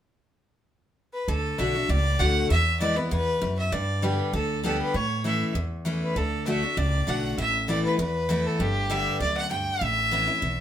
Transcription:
1.13 fiddle B4
1.28 upright bass D2, steel-string acoustic guitar D3, fiddle A4
1.58 upright bass B1, steel-string acoustic guitar D3 A3 D4 F#4, fiddle E5
1.74 steel-string acoustic guitar D4 F#4
1.89 upright bass C#2, steel-string acoustic guitar A2, fiddle D5
2.19 upright bass D2, steel-string acoustic guitar D3 A3 D4 F#4, fiddle F#5
2.50 steel-string acoustic guitar E2, upright bass E2, fiddle E5
2.80 steel-string acoustic guitar E3 G#3 B3 E4, fiddle D5
2.96 steel-string acoustic guitar B3 E4, fiddle B4
3.11 steel-string acoustic guitar E2, upright bass E2, fiddle B4
3.42 steel-string acoustic guitar F#2, upright bass F#2
3.59 fiddle E5
3.72 upright bass G2, steel-string acoustic guitar G2, fiddle D5
4.02 steel-string acoustic guitar D3 G3 B3 G4, fiddle B4
4.33 upright bass D2, steel-string acoustic guitar D3, fiddle A4
4.63 steel-string acoustic guitar D3 G3 B3 G4, fiddle A4
4.82 fiddle B4
4.94 upright bass A2, steel-string acoustic guitar A2, fiddle C#5
5.24 steel-string acoustic guitar E3 A3 C#4 E4, fiddle E5
5.55 upright bass E2, steel-string acoustic guitar E2
5.85 steel-string acoustic guitar E3 A3 C#4 E4
6.03 fiddle B4
6.16 upright bass D2, steel-string acoustic guitar D3, fiddle A4
6.46 steel-string acoustic guitar D3 A3 D4 F#4, fiddle E5
6.63 steel-string acoustic guitar D4 F#4
6.77 upright bass C#2, steel-string acoustic guitar A2, fiddle D5
7.07 upright bass B1, steel-string acoustic guitar D3 A3 D4 F#4, fiddle F#5
7.38 upright bass A1, steel-string acoustic guitar A2, fiddle E5
7.68 steel-string acoustic guitar E3 A3 B3 E4, fiddle D5
7.85 fiddle B4
7.98 upright bass E2, steel-string acoustic guitar E2, fiddle B4
8.29 steel-string acoustic guitar E3 A3 B3 E4
8.47 fiddle A4
8.59 upright bass G1, steel-string acoustic guitar G2, fiddle G4
8.90 steel-string acoustic guitar D3 G3 B3 G4, fiddle E5
9.20 upright bass D2, steel-string acoustic guitar F#2, fiddle D5
9.37 fiddle F#5
9.51 steel-string acoustic guitar G2, fiddle G5
9.81 upright bass A1, steel-string acoustic guitar A2, fiddle E5
10.11 steel-string acoustic guitar E3 B3 C#4 E4
10.27 steel-string acoustic guitar C#4 E4
10.42 upright bass B1, steel-string acoustic guitar E2

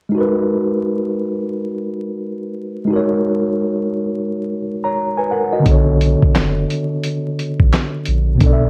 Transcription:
0.09 tine electric piano G#3 D#4
0.15 tine electric piano F#4 A#4
0.20 tine electric piano B4
2.85 tine electric piano G#3 D#4
2.90 tine electric piano F#4 A#4
2.96 tine electric piano C#5
4.84 tine electric piano C#5 A#5
5.17 tine electric piano B4 G#5
5.31 tine electric piano A#4 F#5
5.52 tine electric piano F#4 D#5
5.59 tine electric piano D3 B3
5.65 sub bass B1, tine electric piano D4 A4, kick, closed hi-hat
5.71 tine electric piano C#5
6.01 closed hi-hat
6.22 kick
6.35 sub bass F#1, snare, clap, closed hi-hat
6.70 closed hi-hat
7.04 closed hi-hat
7.39 closed hi-hat
7.60 sub bass A1, kick
7.72 snare, clap, closed hi-hat
8.05 sub bass A#1, closed hi-hat
8.35 tine electric piano B2 B3
8.41 sub bass B1, tine electric piano D4 A4, kick, closed hi-hat
8.46 tine electric piano D5
8.53 tine electric piano E5

